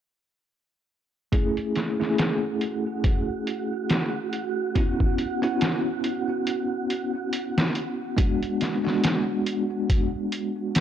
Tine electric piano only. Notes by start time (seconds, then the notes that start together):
1.32 A3 C#4 E4 G#4
2.00 A3 C#4 E4 G#4
4.75 B3 C#4 E4 F#4
5.42 B3 C#4 E4 F#4
8.17 G#3 B3 D4 F#4
8.84 G#3 B3 D4 F#4